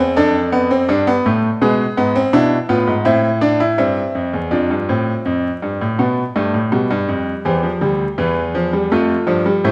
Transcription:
grand piano
Already playing: E2 E5
0.00 C4
0.16 F2 D4 A4 D5
0.52 B3
0.71 C4
0.89 G2 D4
1.07 B3
1.26 A2 A3
1.61 B2 G#3 G#4 B4
1.97 G#2 B3
2.16 C4
2.33 B2 D4 E4
2.69 A2 B3 F4
2.87 G#2
3.05 A2 C4 E4 E5
3.41 D4 D5
3.60 E4
3.78 G2 C4 E5
4.15 F2
4.34 E2
4.51 F2 D4 F4 D5
4.70 G2
4.89 A2 C4
5.25 F2
5.62 G2
5.81 A2
5.99 B2 B3
6.36 G2 A3
6.54 A2
6.72 B2 G3
6.91 G2
7.08 F2
7.45 E2 E3 G4 C5
7.63 F3
7.81 D2 G3
8.18 E2 E3 B4
8.55 F3
8.73 G3
8.91 F2 A3 F4 A4
9.27 G2 F3
9.46 G3
9.64 A2 A3 E4 C5

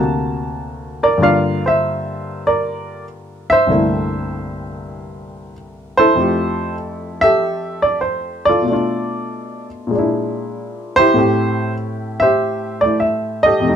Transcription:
grand piano
Already playing: D2 C3 A#3 F#4 A5
1.03 A#4 D5
1.18 G2 D3 A#3
1.23 F4 D5 F5
1.66 C5 E5
2.47 A#4 D5
3.50 C5 E5
3.67 C2 G2 D3 A3 A#3
3.71 E4
5.97 E4 A4 C5
6.15 F2 F3 A3
6.20 G4
7.21 G4 A4 E5
7.82 D5
8.01 C5
8.45 F4 A4 D5
8.62 B2
8.66 A3
8.70 D4 F4
9.87 A#2 G#3
9.95 D4 E4
10.96 E4 G4 C5
11.14 A2 A3 C4
11.19 G4
12.20 G4 C5 E5
12.81 A3 D5
12.85 E4
13.00 E5
13.43 G4 A4 D#5
13.60 F2 C3
13.64 A3
13.69 D#4 G4

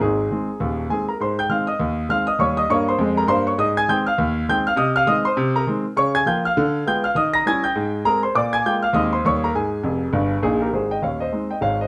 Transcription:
grand piano
0.00 G#1 G#2 C4 D#4 G#4
0.31 D#3 G#3 C4
0.60 D#1 D#2
0.89 D#3 G#3 C4 G#4 G#5
1.08 A#4 A#5
1.20 G#2 C5 C6
1.39 G5 G6
1.49 D#3 G#3 C4 F5 F6
1.67 D#5 D#6
1.80 D#2
2.09 D#3 G#3 C4 F5 F6
2.27 D#5 D#6
2.39 D#2 G3 C#5 C#6
2.57 D#5 D#6
2.69 G2 A#3 C#5 C#6
2.89 C5 C6
2.99 F2 G#3
3.17 A#4 A#5
3.27 G2 A#3 C5 C6
3.47 C#5 C#6
3.58 G#2 D#5 D#6
3.77 G#5 G#6
3.88 D#3 G#3 C4 G5 G6
4.07 F5 F6
4.18 D#2
4.49 D#3 G#3 C4 G5 G6
4.67 F5 F6
4.76 C3 D#5 D#6
4.96 F5 F6
5.07 D#3 G#3 C4 D#5 D#6
5.25 C5 C6
5.37 C3
5.56 A#4 A#5
5.67 D#3 G#3 C4
5.96 C#3 C#5 C#6
6.15 G#5 G#6
6.26 F3 A#3 F4 G5 G6
6.45 F5 F6
6.57 D3
6.86 G#3 B3 F4 G5 G6
7.04 F5 F6
7.15 D#3 D#5 D#6
7.34 A#5 A#6
7.46 G3 C#4 E4 G#5 G#6
7.64 G5 G6
7.75 G#2
8.05 G#3 C4 G#4 A#4 A#5
8.23 C5 C6
8.35 A#2 D5 D6
8.53 G#5 G#6
8.66 G#3 A#3 F4 G5 G6
8.83 F5 F6
8.93 D#2 G#3 C4 D#4 D#5 D#6
9.13 C5 C6
9.25 D#2 G3 A#3 D#4 C#5 C#6
9.44 A#4 A#5
9.54 G#2 G#4 G#5
9.83 F1 F2
10.13 G1 G2
10.42 A#1 A#2 D#4 G#4
10.61 G4 A#4
10.73 G#1 G#2 G#4 C5
10.91 D#5 G5
11.02 D#1 D#2 C#5 F5
11.20 C5 D#5
11.32 G#3 C4 D#4
11.51 D#5 G5
11.61 G#1 G#2 C#5 F5
11.81 C5 D#5

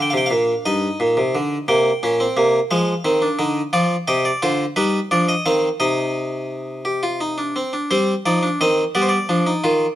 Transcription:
harpsichord
Already playing: D3 D4
0.02 G5
0.10 C3 F5
0.17 G5
0.26 F5
0.31 A#2
0.66 G2 D#4 D#5
1.00 A#2
1.17 C3
1.35 D3
1.68 C3 A#3 G5
2.03 A#2 C#4
2.20 C4
2.37 C3 A#3
2.71 F3 G#3 F5
3.05 D#3 C4
3.22 D4
3.39 D3 D#4
3.73 F3 F4 D5
4.08 C3 G4 D#5
4.25 D5
4.42 D3 F4 C5
4.76 G3 D#4 B4
5.11 F3 D4 D5
5.29 D#5
5.46 D#3 C4 F5
5.80 C3 D#4 D#5
6.85 G4
7.03 F4
7.21 D#4
7.38 D4
7.56 C4
7.73 D4
7.91 G3 C4 C5
8.26 F3 D#4 D5
8.43 D4
8.61 D#3 C4 D#5
8.95 G3 B3 D5
9.02 C5
9.09 D5
9.29 F3 D4
9.46 D#4
9.64 D#3 F4

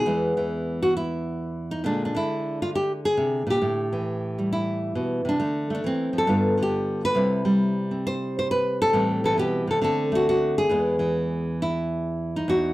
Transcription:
nylon-string guitar
Already playing: G#4
0.06 E2 E3 G#3 B3
0.37 E3
0.83 F#4
0.97 E4
1.71 D#4
1.84 A#2 D3 G#3 D4
2.05 D4
2.15 D3 E4
2.62 F4
2.75 G4
3.05 G#4
3.17 C3
3.47 A#2 G4
3.62 A2
3.93 E3
4.38 G3
4.53 E4
4.95 B2
5.25 C3 D4
5.40 D3 A3
5.70 A3
5.75 D4
5.84 E3 C4
6.13 F3
6.18 A4
6.27 G2 D3 B3 F4
6.58 D3
6.63 G4
7.05 B4
7.15 C3 G3 C4 E4
7.45 G3
7.91 C4
8.07 C5
8.39 C5
8.51 B4
8.82 A4
8.93 A2 E3 G3 C4
9.24 E3 A4
9.38 B2 G4
9.67 C3 A4
9.82 D3 A3 C4 A4
10.12 A3 F#4
10.29 F#4
10.58 G#4
10.69 E2 E3 G#3 B3
10.99 E3
11.62 E4
12.36 D#4
12.48 E2 F#4

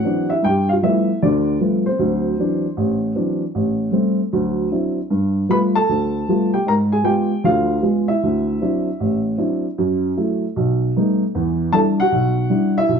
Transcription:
upright piano
Already playing: F#4 F#5
0.04 E3 F#3 C4 D4
0.30 E4 E5
0.43 G2 G5
0.48 G4
0.69 F4 F5
0.82 F3 G3 A3 B3 E5
0.87 E4
1.22 D2 D3 D4 D5
1.60 F3 G3 A3 B3
1.86 C4 C5
1.99 D2 F#3
2.39 E3 F#3 C4 D4
2.77 A1
3.15 E3 F#3 C4 D4
3.55 A1
3.92 G3 A3 C4
4.33 D2 F#3
4.71 F#3 C4 D4 E4
5.10 G2
5.49 G3 A3 B3 F4 B4 B5
5.75 A4 A5
5.89 D2
6.29 G3 A3 B3 F4
6.54 G4 G5
6.66 G#2 A#4 A#5
6.92 G#4 G#5
7.03 G#3 B3 F4 G4 G5
7.44 D2 D3 F4 F5
7.83 G#3 B3 F4
8.08 E4 E5
8.23 D2
8.61 F#3 C4 D4 E4
9.00 A1
9.38 F#3 C4 D4 E4
9.78 F#2
10.17 F#3 A3 E4
10.56 B1
10.96 G3 A3 B3 D#4
11.35 E2 E3
11.72 G3 D4 E4 A4 A5
12.00 F#4 F#5
12.12 B1
12.50 G3 D4 E4
12.78 E4 E5
12.89 B1

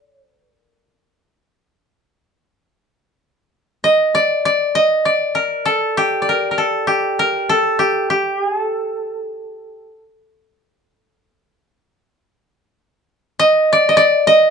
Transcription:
koto
Already playing: C#5
0.19 C5
0.42 B4
0.65 A#4
3.84 D#5
4.15 D5
4.45 D5
4.75 D#5
5.05 D5
5.35 A#4
5.66 A4
5.97 G4
6.22 D5
6.29 A#4
6.51 A#4
6.58 A4
6.87 G4
7.19 A#4
7.49 A4
7.79 G4
8.10 G4
8.41 G#4
8.61 A4
13.39 D#5
13.73 D5
13.89 D#5
13.97 D5
14.27 D#5

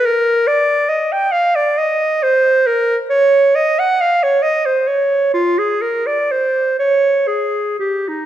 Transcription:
clarinet
0.05 A#4
0.47 D5
0.89 D#5
1.12 G5
1.32 F5
1.55 D5
1.78 D#5
2.23 C5
2.66 A#4
3.10 C#5
3.55 D#5
3.79 F#5
4.00 F5
4.23 C#5
4.42 D#5
4.66 C5
4.87 C#5
5.34 F4
5.58 G#4
5.82 A#4
6.06 D5
6.31 C5
6.79 C#5
7.27 G#4
7.79 G4
8.08 D#4

